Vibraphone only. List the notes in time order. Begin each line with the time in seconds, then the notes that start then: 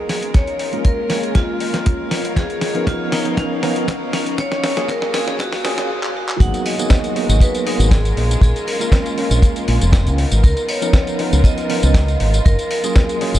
0.10 G#4
0.35 C#5
0.86 A#4
1.10 G#4
1.36 F4
2.11 F4
2.37 G#4
2.87 F4
3.13 D#4
3.38 C#4
4.14 C#4
4.40 C#5
4.90 A#4
5.15 G#4
5.40 F#4
6.17 F#4
6.41 F#5
6.66 D#5
7.42 B4
7.67 A#4
7.92 G#4
8.43 G#4
8.67 A#4
10.44 A#4
10.69 C#5
11.45 D#5
12.45 A#4
12.71 A#4